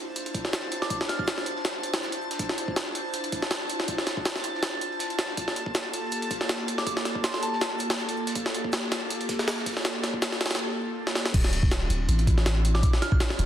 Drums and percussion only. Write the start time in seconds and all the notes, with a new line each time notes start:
0.16 closed hi-hat, shaker
0.26 closed hi-hat
0.33 kick, closed hi-hat, shaker
0.45 snare
0.52 snare, closed hi-hat
0.71 closed hi-hat, shaker
0.82 snare
0.90 kick, closed hi-hat, shaker
1.01 snare
1.09 snare, closed hi-hat, shaker
1.19 kick
1.27 snare, closed hi-hat, shaker
1.38 snare
1.46 closed hi-hat, shaker
1.56 snare
1.65 snare, closed hi-hat
1.83 closed hi-hat, shaker
1.93 snare, closed hi-hat
2.03 snare, shaker
2.12 closed hi-hat
2.21 shaker
2.31 snare, closed hi-hat
2.39 kick, closed hi-hat, shaker
2.49 snare
2.58 closed hi-hat, shaker
2.68 kick
2.76 snare, closed hi-hat, shaker
2.95 closed hi-hat, open hi-hat
3.13 closed hi-hat, shaker
3.24 closed hi-hat
3.32 kick, closed hi-hat, shaker
3.42 snare
3.51 snare, closed hi-hat, shaker
3.69 closed hi-hat, shaker
3.80 snare
3.88 kick, closed hi-hat, shaker
3.98 snare
4.07 snare, closed hi-hat, shaker
4.17 kick
4.25 snare, closed hi-hat, shaker
4.36 snare
4.44 closed hi-hat, shaker
4.54 snare
4.63 snare, closed hi-hat, shaker
4.81 closed hi-hat, shaker
4.92 closed hi-hat
4.99 snare, closed hi-hat, shaker
5.10 closed hi-hat
5.19 snare, closed hi-hat, shaker
5.29 snare
5.37 kick, closed hi-hat, shaker
5.48 snare
5.56 closed hi-hat, shaker
5.66 kick
5.75 snare, closed hi-hat
5.93 closed hi-hat, open hi-hat
6.11 closed hi-hat, shaker
6.22 closed hi-hat
6.30 kick, closed hi-hat, shaker
6.41 snare
6.49 snare, closed hi-hat, shaker
6.68 closed hi-hat, shaker
6.78 snare
6.87 kick, closed hi-hat, shaker
6.97 snare
7.05 snare, closed hi-hat, shaker
7.15 kick
7.24 snare, closed hi-hat, shaker
7.34 snare
7.43 closed hi-hat, shaker
7.53 snare
7.61 snare, closed hi-hat
7.78 closed hi-hat, shaker
7.90 snare, closed hi-hat
7.98 snare, shaker
8.09 closed hi-hat
8.17 shaker
8.27 snare, closed hi-hat
8.36 kick, closed hi-hat, shaker
8.46 snare
8.54 closed hi-hat, shaker
8.64 kick
8.72 snare, closed hi-hat, shaker
8.91 snare, closed hi-hat, open hi-hat
9.10 closed hi-hat, shaker
9.21 closed hi-hat
9.29 kick, snare, closed hi-hat, shaker
9.39 snare, shaker
9.48 snare, closed hi-hat
9.57 snare, shaker
9.66 kick, snare, closed hi-hat, shaker
9.71 snare, shaker
9.76 snare, shaker
9.81 snare, shaker
9.85 snare, closed hi-hat
10.03 snare, closed hi-hat, shaker
10.14 kick
10.22 snare, closed hi-hat, shaker
10.32 snare
10.41 snare, closed hi-hat, shaker
10.46 snare, closed hi-hat
10.50 snare, closed hi-hat
10.55 snare, closed hi-hat
11.07 snare
11.15 snare
11.25 snare
11.34 kick, closed hi-hat, crash
11.44 snare
11.53 closed hi-hat
11.63 kick
11.71 snare, closed hi-hat
11.90 closed hi-hat
12.09 closed hi-hat
12.19 closed hi-hat
12.27 kick, closed hi-hat
12.38 snare
12.46 snare, closed hi-hat
12.65 closed hi-hat
12.75 snare
12.83 kick, closed hi-hat
12.93 snare
13.02 snare, closed hi-hat
13.12 kick
13.20 snare, closed hi-hat
13.30 snare
13.39 closed hi-hat